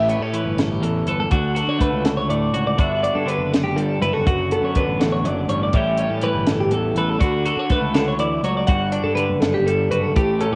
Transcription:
Already playing: A1 A2 G4
0.09 B3 C#5, closed hi-hat
0.20 A2 C#4 A4
0.33 E3 B4, closed hi-hat
0.46 G1
0.58 A4, snare, closed hi-hat
0.70 G4
0.82 A1 E2 A4, closed hi-hat
1.06 G1 A4 B4, closed hi-hat
1.20 A4
1.31 D2 D3 F#4, kick, closed hi-hat
1.55 F#4 A4, closed hi-hat
1.68 D3 C#5
1.79 A3 B4, kick, closed hi-hat
1.93 C#2
2.05 A4, snare, closed hi-hat
2.17 C#5
2.29 D2 A2 D5, closed hi-hat
2.53 C#2 F#4 C#5, closed hi-hat
2.67 D5
2.78 G1 D3 B3 D4 F#4 E5, kick, closed hi-hat
3.03 D4 D5, closed hi-hat
3.15 G2 A4
3.26 D3 B4, closed hi-hat
3.38 F#1
3.53 A4, snare, closed hi-hat
3.64 G4
3.76 G1 G2 A4, closed hi-hat
4.01 F#1 E4 B4, closed hi-hat
4.13 F#4 A4
4.26 F#1 F#2 F#4, kick, closed hi-hat
4.51 B3 A4, closed hi-hat
4.62 F#2 C#5
4.75 D3 B4, kick, closed hi-hat
4.87 A1
5.00 E2 A4, snare, closed hi-hat
5.12 C#5
5.23 F#1 F#2 D5, closed hi-hat
5.47 A1 G2 C#5, closed hi-hat
5.63 D5
5.73 A1 A2 E3 G3 E5, kick, closed hi-hat
5.77 C#4 G4
5.97 C#4 C#5, closed hi-hat
6.10 A2 A4
6.21 E3 B4, closed hi-hat
6.35 G1
6.47 A4, snare, closed hi-hat
6.61 G4
6.71 A1 E2 A4, closed hi-hat
6.96 A1 A4 B4, closed hi-hat
7.10 A4
7.20 D2 D3 F#4, kick, closed hi-hat
7.45 F#4 A4, closed hi-hat
7.57 D3 C#5
7.70 A3 B4, kick, closed hi-hat
7.81 C#2
7.94 D3 A4, snare, closed hi-hat
8.08 C#5
8.19 D2 E3 D5, closed hi-hat
8.43 C#2 F#3 C#5, closed hi-hat
8.57 D5
8.67 G1 G2 F#4 F#5, kick, closed hi-hat
8.92 D4 D5, closed hi-hat
9.04 G2 A4
9.15 D3 B4, closed hi-hat
9.30 F#1
9.41 A4, snare, closed hi-hat
9.54 G4
9.67 G1 G2 A4, closed hi-hat
9.91 F#1 F#4 B4, closed hi-hat
10.02 A4
10.16 A1 A2 G4, kick, closed hi-hat
10.41 C#4 A4, closed hi-hat
10.52 A2

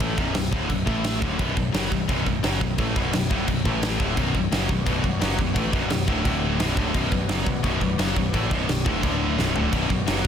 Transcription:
0.00 A1 A2 E3 A3, kick, crash
0.17 B0 B1 F#2 B2, kick
0.34 B0 B1 F#2, snare, crash
0.51 D1 D2 A2 D3, kick
0.69 B0 B1 F#2, kick, crash
0.86 A1 A2 E3 A3, kick
1.04 snare, crash
1.21 D1 D2 A2 D3, kick
1.38 B0 B1 F#2 B2, kick, crash
1.56 B0 B1 F#2, kick
1.72 F#1 F#2 C#3 F#3, snare, crash
1.90 B0 B1 F#2, kick
2.08 B0 B1 F#2 B2, kick, crash
2.26 B0 B1 F#2, kick
2.42 F#1 F#2 C#3 F#3, snare, crash
2.61 B0 B1 F#2, kick
2.78 A1 A2 E3 A3, kick, crash
2.95 B0 B1 F#2 B2, kick
3.13 B0 B1 F#2, snare, crash
3.30 D1 D2 A2 D3, kick
3.47 B0 B1 F#2, kick, crash
3.64 A1 A2 E3 A3, kick
3.83 snare, crash
3.98 D1 D2 A2 D3, kick
4.17 B0 B1 F#2 B2 B3 F#4 C#5 D5, kick, crash
4.34 B0 B1 F#2, kick
4.51 F#1 F#2 C#3 F#3, snare, crash
4.69 B0 B1 F#2, kick
4.86 B0 B1 F#2 B2, kick, crash
5.03 B0 B1 F#2, kick
5.19 F#1 F#2 C#3 F#3, snare, crash
5.37 B0 B1 F#2, kick
5.54 A1 A2 E3 A3, kick, crash
5.72 B0 B1 F#2 B2, kick
5.90 B0 B1 F#2, snare, crash
6.07 D1 D2 A2 D3, kick
6.24 D1 D2 A2 D3 A3 E4 D5, kick, crash
6.59 B0 B1 F#2 B2 B3 F#4 C#5, snare, crash
6.77 D1 D2 A2 D3, kick
6.94 B0 B1 F#2 B2, kick, crash
7.11 B0 B1 F#2, kick
7.29 F#1 F#2 C#3 F#3, snare, crash
7.46 B0 B1 F#2, kick
7.63 B0 B1 F#2 B2, kick, crash
7.80 B0 B1 F#2, kick
7.98 F#1 F#2 C#3 F#3, snare, crash
8.16 B0 B1 F#2, kick
8.33 A1 A2 E3 A3, kick, crash
8.51 B0 B1 F#2 B2, kick
8.67 B0 B1 F#2, snare, crash
8.85 D1 D2 A2 D3, kick
9.03 D1 D2 A2 D3 A3 E4, kick, crash
9.37 B0 B1 F#2 B2 B3 F#4 C#5, snare
9.54 D1 D2 A2 D3, floor tom
9.71 B0 B1 F#2 B2 B3 F#4 C#5 D5, kick, crash
9.88 B0 B1 F#2, kick
10.06 F#1 F#2 C#3 F#3, snare, crash
10.23 B1 F#2

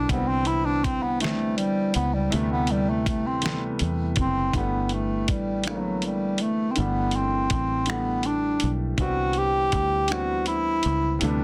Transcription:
Already playing: D3 E3 G3 A3 D4
0.08 C2 D3 D#3 G3 B3, kick, closed hi-hat
0.13 E3 C4
0.28 C4
0.45 E4, closed hi-hat
0.65 D4
0.84 C4, kick, closed hi-hat
1.02 B3
1.19 D3 E3 G3 A3 B3, closed hi-hat
1.24 C4, snare
1.58 G3, closed hi-hat
1.94 C#2 B3, closed hi-hat
2.14 G3
2.30 D2 C3 E3 G3 A3, closed hi-hat
2.35 B3
2.52 B3
2.67 closed hi-hat
2.71 G3
2.89 A3
3.06 A3, kick, closed hi-hat
3.27 C4
3.42 C3 E3 G3 A3, closed hi-hat
3.46 B3, snare
3.79 E2, closed hi-hat
4.16 F#1, kick, closed hi-hat
4.20 C4
4.53 G1 D3 E3 G3 B3, kick, closed hi-hat
4.57 A3 B3
4.89 closed hi-hat
4.94 A3
5.28 A1 G3, kick, closed hi-hat
5.64 D3 E3 A3, finger snap, closed hi-hat
5.68 F#3 A#3
5.75 B3
6.02 G3, closed hi-hat
6.38 F#1 A3, closed hi-hat
6.71 D3 C4
6.76 G1 E3 G3 A3 B3 D4, closed hi-hat
7.11 closed hi-hat
7.16 C4
7.50 A1, kick, closed hi-hat
7.85 D3 E3 G3 A3, closed hi-hat
7.90 B3 D4, finger snap
8.23 D4, closed hi-hat
8.60 B1, closed hi-hat
8.97 C2 D3 E3 G3 B3 F#4, kick, closed hi-hat
9.02 C4
9.33 closed hi-hat
9.38 G4
9.72 D2, kick, closed hi-hat
10.08 D3 E3 G3 B3 F#4, finger snap, closed hi-hat
10.13 C4
10.46 E4, closed hi-hat
10.83 C#2, closed hi-hat
11.19 D2 C3 E3 G3 A3 D4, closed hi-hat
11.24 B3

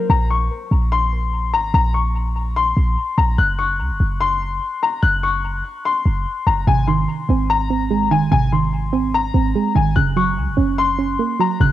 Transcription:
0.10 A#1 A#5
0.30 C#6
0.71 A#1
0.92 C6
1.53 G#1 A#5
1.74 A#1 A#5
1.94 C#6
2.56 C6
2.77 A#1
3.18 A#1 A#5
3.38 F#1 F#6
3.59 C#6
3.80 C#2
3.90 F#1
4.00 F#1
4.21 C6
4.83 A#5
5.02 F#1 F#6
5.23 C#6
5.85 C6
6.06 F#1
6.47 F#1 A#5
6.67 G#1 C3 G#5
6.87 D#3 C6
7.29 G#1 C4
7.50 A#5
7.70 C4
7.90 G#3
8.11 F#1 D#3 G#5
8.31 G#1 C3 G#5
8.52 D#3 C6
8.93 C4
9.14 A#5
9.34 G#1 C4
9.55 G#3
9.75 G#1 D#3 G#5
9.96 F#1 C#3 F#6
10.16 F#3 C#6
10.37 C#2
10.47 F#1
10.57 F#1 C#4
10.78 C6
10.98 C#4
11.19 A#3
11.39 F#3 A#5
11.60 F#1 C#3 F#6

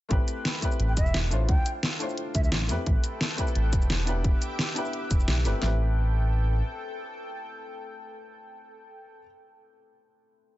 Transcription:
0.09 A1 A3 C4 E4 G4 B4, kick, closed hi-hat
0.28 closed hi-hat, shaker
0.45 snare, closed hi-hat
0.61 A3 C4 E4 G4 B4, kick, closed hi-hat, shaker
0.71 shaker
0.80 A1, closed hi-hat
0.89 G5
0.97 E1 E5, kick, closed hi-hat, shaker
1.06 shaker
1.14 snare, closed hi-hat
1.29 A1 A3 D4 E4 F4 C5, closed hi-hat, shaker
1.48 D2 G5, kick, closed hi-hat
1.66 closed hi-hat, shaker
1.83 snare, closed hi-hat
1.98 A3 D4 E4 F4 C5, closed hi-hat, shaker
2.09 shaker
2.17 closed hi-hat
2.35 D2 E5, kick, closed hi-hat, shaker
2.44 E5, shaker
2.52 A1, snare, closed hi-hat
2.61 snare
2.67 F2 A3 C4 E4 G4 B4, closed hi-hat, shaker
2.86 A1 A4 G5, kick, closed hi-hat
3.04 closed hi-hat, shaker
3.21 snare, closed hi-hat
3.36 A3 C4 E4 G4 B4, kick, closed hi-hat, shaker
3.47 shaker
3.55 A1, closed hi-hat
3.73 E1, kick, closed hi-hat, shaker
3.82 shaker
3.90 snare, closed hi-hat
4.05 E1 B3 D4 E4 G4 B4 E5 D6, closed hi-hat, shaker
4.24 E1, kick, closed hi-hat
4.42 closed hi-hat, shaker
4.59 snare, closed hi-hat
4.74 B3 D4 E4 G4 B4, closed hi-hat, shaker
4.85 shaker
4.93 closed hi-hat
5.11 E1, kick, closed hi-hat, shaker
5.20 shaker
5.28 B1, snare, closed hi-hat
5.37 snare
5.44 G1 A3 C4 E4 G4 B4, closed hi-hat, shaker
5.59 A1 A3 C4 E4 A4 G5, snare, clap
5.64 G4 B4

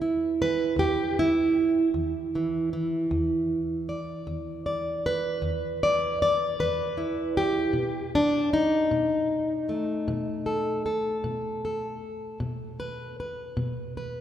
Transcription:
Already playing: E2 B4
0.02 E4
0.42 B4
0.76 E2 G4
1.19 E4
1.94 E2
2.35 E3
2.73 E3
3.11 E2
3.89 D5
4.27 E2
4.66 D5
5.06 B4
5.42 E2
5.83 D5
6.22 D5
6.59 E2 B4
6.97 E4
7.37 G4
7.73 B2
8.15 D4
8.53 D#4
8.91 B2
9.69 A3
10.08 B2
10.46 A4
10.86 A4
11.24 B2
11.65 A4
12.40 B2
12.80 B4
13.20 B4
13.57 B2
13.97 B4

